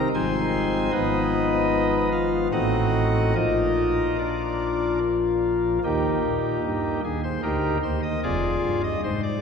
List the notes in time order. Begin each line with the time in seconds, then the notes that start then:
0.14 G#1 G#2 F3 C4 D#4 C5 G#5 C6
0.92 G#1 G#2 F3 B3 D#4 B4 D#5
2.12 F4 F5
2.52 A1 A2 A3 C4 D#4 F#4 D#5 F#5
3.35 A#1 A#2 F3 A#3 D#4 F4 A#4 D#5
4.18 D4 A#4 D5
5.84 D#2 D#3 A#3 D#4 G4
6.25 A#2
6.64 G2
7.04 D#2 G#4
7.23 C5
7.43 D2 D#4 G4 A#4
7.83 D#2 C5
8.03 D#5
8.23 F1 F2 F4 G#4 D5
8.63 G2
8.84 D#5
9.04 G#2 C5
9.23 D5